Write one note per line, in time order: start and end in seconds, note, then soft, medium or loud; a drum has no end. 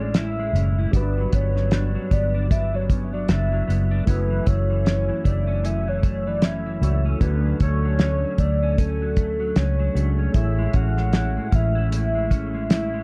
0.00 0.50 A1 medium
0.00 0.94 A2 medium
0.00 0.38 G#3 medium
0.00 0.88 A3 medium
0.00 0.54 C#4 medium
0.00 0.15 E4 medium
0.00 0.89 E4 medium
0.00 0.90 G#4 medium
0.00 0.18 D5 medium
0.00 0.91 E5 medium
0.14 0.77 E4 medium
0.14 0.78 E5 loud
0.14 snare loud
0.14 closed hi-hat medium
0.39 1.03 G#3 medium
0.53 0.85 F#1 medium
0.53 1.03 C#4 medium
0.53 closed hi-hat medium
0.79 0.94 E4 medium
0.91 1.25 G1 loud
0.91 2.51 G2 medium
0.91 4.02 G3 medium
0.91 4.03 D4 medium
0.91 1.71 D4 medium
0.91 4.04 F#4 medium
0.91 kick loud
0.91 closed hi-hat medium
0.96 1.36 B4 loud
0.96 4.05 B4 medium
1.18 1.55 F#3 medium
1.32 1.96 G1 loud
1.32 2.10 B3 medium
1.32 2.14 C#5 loud
1.32 kick medium
1.32 closed hi-hat medium
1.56 1.95 F#3 medium
1.56 snare soft
1.71 2.33 D4 medium
1.71 snare loud
1.71 closed hi-hat medium
1.95 2.74 F#3 medium
2.11 3.25 G1 medium
2.11 2.89 B3 medium
2.11 2.53 D5 loud
2.11 kick medium
2.11 closed hi-hat medium
2.34 2.49 D4 medium
2.51 3.28 D4 medium
2.51 2.77 E5 medium
2.51 kick loud
2.51 closed hi-hat medium
2.74 3.14 F#3 medium
2.74 3.14 C#5 medium
2.90 3.66 B3 medium
2.90 kick medium
2.90 closed hi-hat medium
3.13 3.52 F#3 medium
3.13 3.31 D5 medium
3.29 3.61 F#1 loud
3.29 3.90 D4 medium
3.29 3.92 E5 medium
3.29 snare loud
3.29 closed hi-hat medium
3.52 4.30 F#3 medium
3.68 4.00 F#1 loud
3.68 4.17 B3 medium
3.68 closed hi-hat medium
3.91 4.07 D4 medium
4.05 4.39 F#1 loud
4.05 5.62 F#2 medium
4.05 6.77 A3 medium
4.05 4.85 C#4 medium
4.05 6.78 E4 medium
4.05 6.79 F#4 medium
4.05 4.48 B4 loud
4.05 kick loud
4.05 closed hi-hat medium
4.10 6.79 E5 medium
4.30 4.68 E3 medium
4.46 5.10 F#1 loud
4.46 5.24 A3 medium
4.46 5.28 C#5 loud
4.46 kick medium
4.46 closed hi-hat medium
4.70 5.07 E3 medium
4.85 5.47 C#4 medium
4.85 snare loud
4.85 closed hi-hat medium
5.08 5.87 E3 medium
5.24 6.78 F#1 medium
5.24 6.04 A3 medium
5.24 5.67 D5 loud
5.24 kick medium
5.24 closed hi-hat medium
5.47 5.64 C#4 medium
5.63 7.30 F#2 medium
5.63 6.42 C#4 medium
5.63 5.90 E5 medium
5.63 closed hi-hat loud
5.88 6.26 E3 medium
5.88 6.29 C#5 medium
6.03 6.82 A3 medium
6.03 kick medium
6.03 closed hi-hat medium
6.27 6.65 E3 medium
6.27 6.46 D5 medium
6.42 7.05 C#4 medium
6.42 7.06 E5 loud
6.42 snare loud
6.42 closed hi-hat loud
6.66 7.31 E3 medium
6.81 7.13 C#2 medium
6.81 7.17 A3 medium
6.81 7.61 A3 medium
6.81 7.21 E4 soft
6.81 7.21 F#4 soft
6.81 7.22 C#5 medium
6.81 closed hi-hat medium
7.06 7.21 C#4 medium
7.18 7.53 D2 loud
7.18 8.78 D3 medium
7.18 9.90 A3 medium
7.18 8.00 C#4 medium
7.18 9.91 D4 medium
7.18 9.92 F#4 medium
7.18 7.57 B4 loud
7.18 kick loud
7.18 closed hi-hat medium
7.23 9.93 A4 medium
7.45 7.84 F#3 medium
7.60 8.23 D2 loud
7.60 8.39 A3 medium
7.60 8.40 C#5 loud
7.60 kick loud
7.60 closed hi-hat medium
7.85 8.23 F#3 medium
7.99 8.62 C#4 medium
7.99 snare loud
7.99 closed hi-hat medium
8.24 9.01 F#3 medium
8.38 9.52 D2 medium
8.38 9.17 A3 medium
8.38 8.80 D5 loud
8.38 kick medium
8.38 closed hi-hat medium
8.63 8.79 C#4 medium
8.78 9.56 C#4 medium
8.78 9.56 A4 medium
8.78 kick loud
8.78 closed hi-hat medium
9.02 9.39 F#3 medium
9.17 9.95 A3 medium
9.17 kick medium
9.17 closed hi-hat medium
9.40 9.78 F#3 medium
9.56 9.88 C#2 loud
9.56 10.18 C#4 medium
9.56 10.37 C#5 loud
9.56 snare loud
9.56 closed hi-hat medium
9.79 10.44 F#3 medium
9.94 10.27 C#2 medium
9.94 10.31 A3 medium
9.94 10.61 A3 medium
9.94 10.34 D4 soft
9.94 10.35 F#4 soft
9.94 10.34 G#4 medium
9.94 closed hi-hat medium
10.19 10.35 C#4 medium
10.32 10.66 A1 loud
10.32 11.90 A2 medium
10.32 13.03 A3 medium
10.32 13.03 E4 medium
10.32 11.12 E4 medium
10.32 13.03 G#4 medium
10.32 10.77 E5 loud
10.32 kick loud
10.32 closed hi-hat medium
10.37 13.03 C#5 medium
10.58 10.96 G#3 medium
10.73 11.37 A1 loud
10.73 11.50 C#4 medium
10.73 11.56 F#5 loud
10.73 kick medium
10.73 closed hi-hat medium
10.97 11.36 G#3 medium
10.97 snare soft
11.13 11.74 E4 medium
11.13 snare loud
11.13 closed hi-hat medium
11.37 12.14 G#3 medium
11.52 13.03 A1 medium
11.52 12.29 C#4 medium
11.52 12.71 E5 loud
11.52 kick medium
11.52 closed hi-hat medium
11.75 11.91 E4 medium
11.92 13.03 A2 medium
11.92 12.69 E4 medium
11.92 closed hi-hat loud
12.15 12.53 G#3 medium
12.30 13.03 C#4 medium
12.30 kick medium
12.30 closed hi-hat medium
12.54 12.92 G#3 medium
12.70 13.03 E4 medium
12.70 13.03 E5 loud
12.70 snare loud
12.70 closed hi-hat loud
12.94 13.03 G#3 medium